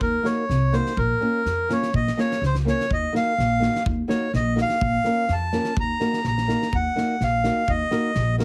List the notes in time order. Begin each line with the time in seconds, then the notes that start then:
0.00 D#2 A#4, kick
0.23 A#3 D#4 F#4 A#4 C#5, snare
0.49 C2, snare
0.72 A#3 D#4 F#4 A#4 C5, snare
0.86 snare
0.97 A#1 A#4, kick
1.21 A#3 C#4 F4 A#4
1.45 F2, snare
1.69 A#3 C#4 F4 A#4 C#5, snare
1.83 snare
1.93 A#1 D#5, kick
2.08 snare
2.17 A#3 C#4 F4 A#4 C#5, snare
2.32 snare
2.41 C#2, snare
2.46 C5
2.55 snare
2.65 A#3 C#4 F4 A#4, snare
2.69 C#5
2.81 snare
2.90 D#2 D#5, kick
3.13 A#3 D#4 F#4 A#4 F5, snare
3.38 A#1, snare
3.60 A#3 D#4 F#4 A#4, snare
3.76 snare
3.86 D#2, kick
4.08 A#3 D#4 F#4 A#4 C#5, snare
4.33 A#1 D#5, snare
4.56 A#3 D#4 F#4 A#4, snare
4.62 F5
4.69 snare
4.81 A#1, kick
5.04 A#3 C#4 F4 A#4, snare
5.28 F2, snare
5.33 A5
5.52 A#3 C#4 F4 A#4, snare
5.64 snare
5.77 D#2 A#5, kick
6.00 A#3 D#4 F#4 A#4, snare
6.13 snare
6.24 A#1 A#5, snare
6.38 snare
6.48 A#3 D#4 F#4 A#4, snare
6.62 snare
6.72 D#2 F#5, kick
6.96 A#3 D#4 F#4 A#4, snare
7.20 A#1 F5, snare
7.44 A#3 D#4 F#4 A#4, snare
7.68 D#2 D#5, kick
7.91 A#3 D#4 F#4 A#4, snare
8.15 A#1, snare
8.38 A#3 D#4 F#4 A#4, snare